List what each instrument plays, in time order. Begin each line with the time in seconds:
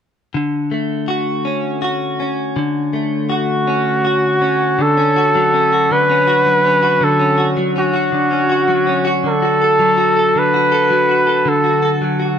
0.34 clean electric guitar D3
0.71 clean electric guitar A3
1.08 clean electric guitar F#4
1.45 clean electric guitar C#4
1.82 clean electric guitar F#4
2.20 clean electric guitar C#4
2.56 clean electric guitar D3
2.93 clean electric guitar A3
3.30 clean electric guitar F#4, flugelhorn F#4
3.67 clean electric guitar C#4
4.05 clean electric guitar F#4
4.42 clean electric guitar C#4
4.79 clean electric guitar D3, flugelhorn A4
4.97 clean electric guitar C#4
5.16 clean electric guitar F#4
5.35 clean electric guitar F#3
5.54 clean electric guitar C#4
5.72 clean electric guitar F#4
5.91 clean electric guitar D3, flugelhorn B4
6.10 clean electric guitar C#4
6.27 clean electric guitar F#4
6.46 clean electric guitar F#3
6.65 clean electric guitar C#4
6.83 clean electric guitar F#4
7.01 clean electric guitar D3, flugelhorn A4
7.19 clean electric guitar C#4
7.38 clean electric guitar F#4
7.57 clean electric guitar F#3
7.76 clean electric guitar C#4, flugelhorn F#4
7.93 clean electric guitar F#4
8.12 clean electric guitar D3
8.31 clean electric guitar C#4
8.49 clean electric guitar F#4
8.68 clean electric guitar F#3
8.87 clean electric guitar C#4
9.05 clean electric guitar F#4
9.24 clean electric guitar D3, flugelhorn A4
9.42 clean electric guitar F#4
9.62 clean electric guitar A4
9.79 clean electric guitar F#3
9.98 clean electric guitar F#4
10.17 clean electric guitar A4
10.35 clean electric guitar D3, flugelhorn B4
10.54 clean electric guitar F#4
10.72 clean electric guitar A4
10.90 clean electric guitar F#3
11.09 clean electric guitar F#4
11.27 clean electric guitar A4
11.45 clean electric guitar D3, flugelhorn A4
11.64 clean electric guitar F#4
11.83 clean electric guitar A4
12.02 clean electric guitar F#3
12.20 clean electric guitar F#4
12.24 flugelhorn F#4